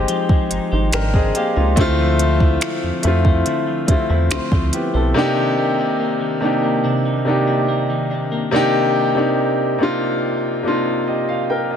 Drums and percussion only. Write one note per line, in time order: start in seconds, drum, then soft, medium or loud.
0.08 closed hi-hat medium
0.29 kick medium
0.51 closed hi-hat medium
0.93 finger snap loud
0.93 closed hi-hat medium
1.14 kick medium
1.35 closed hi-hat medium
1.77 kick loud
1.77 closed hi-hat medium
2.19 closed hi-hat medium
2.40 kick medium
2.61 finger snap loud
2.61 closed hi-hat medium
3.03 closed hi-hat medium
3.25 kick medium
3.46 closed hi-hat medium
3.88 kick medium
3.88 closed hi-hat medium
4.31 finger snap loud
4.31 closed hi-hat medium
4.52 kick loud
4.73 closed hi-hat medium